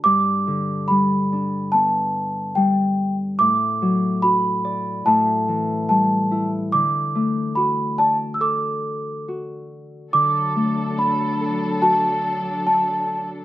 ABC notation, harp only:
X:1
M:4/4
L:1/8
Q:1/4=72
K:D
V:1 name="Harp"
G,, D, G, D B,2 G,2 | A,, F, F d A,, E, G, E | D, A, F d A2 F2 | D, A, D A F2 D2 |]